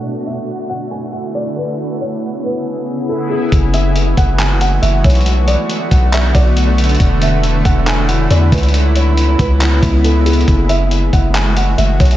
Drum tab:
HH |------------------------------------------------------------------------------------------------|------------------------------------------------------------------------------------------------|x-----------x-----------x-----------x-----------x-----------x-----------x-----------x--x--x--x--|x-----------x-----------x-----------x-----------x-----------x-----------x-----------x--x--x--x--|
CP |------------------------------------------------------------------------------------------------|------------------------------------------------------------------------------------------------|------------------------------------------------x-----------------------------------------------|------------------------------------------------x-----------------------------------------------|
BD |------------------------------------------------------------------------------------------------|------------------------------------------------------------------------------------------------|o-----------------------------------o-----------------------------------------------o-----------|------------------------------------o-----------------------o-----------------------------------|

HH |x-----------x-----------x-----------x-----------x-----------x-----------x-----------x--x--x--x--|x-----------x-----------x-----------x-----------x-----------x-----------x-----------x---x---x---|x-----------x-----------x-----------x-----------x-----------x-----------x-----------x--x--x-----|
CP |------------------------------------------------x-----------------------------------------------|------------------------------------------------x-----------------------------------------------|------------------------------------------------x-----------------------------------------------|
BD |o-----------------------------------o-----------------------------------------------o-----------|------------------------------------o-----------------------o-----------------------------------|o-----------------------------------o-----------------------------------------------o-----------|